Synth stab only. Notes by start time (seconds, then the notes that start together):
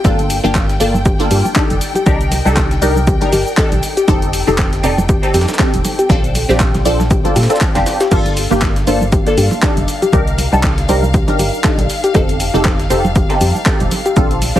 0.04 A#3 D4 F4 A4
0.44 A#3 D4 F4 G4
0.80 A#3 D4 F4 A4
1.19 A#3 D4 F4 A4
1.55 D4 D#4 G4 A4
2.06 D4 D#4 G4 A#4
2.45 D4 D#4 G4 A4
2.82 D4 D#4 G4 A#4
3.21 D4 D#4 G4 A#4
3.57 D4 D#4 G4 A4
4.08 C4 D#4 G4 A4
4.47 C4 D#4 G4 A4
4.83 C4 D#4 G4 A4
5.23 C4 D#4 G4 A4
5.59 C4 D#4 G4 A4
6.09 C4 D4 F4 A4
6.49 C4 D4 F4 G4
6.85 C4 D4 F4 A4
7.24 C4 D4 F4 A4
7.50 C4 D4 F4 A4
7.75 C4 D4 F4 G4
8.11 A#3 D4 F4 A4
8.51 A#3 D4 F4 G4
8.87 A#3 D4 F4 A4
9.26 A#3 D4 F4 A4
9.62 D4 D#4 G4 A4
10.13 D4 D#4 G4 A#4
10.52 D4 D#4 G4 A4
10.88 D4 D#4 G4 A#4
11.28 D4 D#4 G4 A#4
11.64 D4 D#4 G4 A4
12.14 C4 D#4 G4 A4
12.54 C4 D#4 G4 A4
12.90 C4 D#4 G4 A4
13.29 C4 D#4 G4 A4
13.66 C4 D#4 G4 A4
14.16 C4 D4 F4 A4
14.55 C4 D4 F4 G4